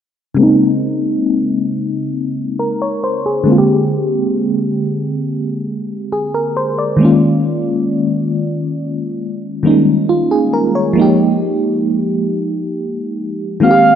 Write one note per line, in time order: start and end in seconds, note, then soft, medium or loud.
0.35 3.41 C#3 medium
0.35 3.42 G#3 medium
0.39 3.43 A#3 medium
0.39 3.44 C4 medium
0.39 3.45 D#4 medium
2.59 2.80 A#4 medium
2.82 3.02 C#5 medium
3.04 3.24 C5 medium
3.26 3.67 G#4 medium
3.44 6.94 D3 medium
3.44 6.95 G#3 medium
3.44 6.96 A#3 medium
3.50 6.97 C4 medium
3.50 3.56 F4 medium
3.58 6.13 G4 medium
6.12 6.33 G#4 medium
6.34 6.55 A#4 medium
6.57 6.77 C5 medium
6.78 7.20 D5 medium
6.97 9.59 D#3 medium
6.97 9.60 G#3 medium
7.01 9.61 A#3 medium
7.01 9.62 C#4 medium
7.05 9.63 F4 medium
9.63 10.96 D#3 medium
9.63 9.71 G3 soft
9.63 10.96 A#3 medium
9.63 10.98 C#4 soft
9.67 10.94 G#3 soft
9.67 10.98 D#4 medium
10.09 10.30 F4 medium
10.31 10.52 G#4 medium
10.53 10.74 A#4 medium
10.75 11.17 C#5 medium
10.93 13.56 F3 medium
10.93 13.57 G#3 medium
10.97 13.58 A#3 medium
10.97 13.59 D#4 medium
11.01 13.60 G4 medium
13.60 13.95 D#3 medium
13.60 13.95 G#3 medium
13.60 13.95 A#3 medium
13.60 13.95 C4 medium
13.60 13.95 F5 loud
13.64 13.69 F#4 medium
13.71 13.95 G4 medium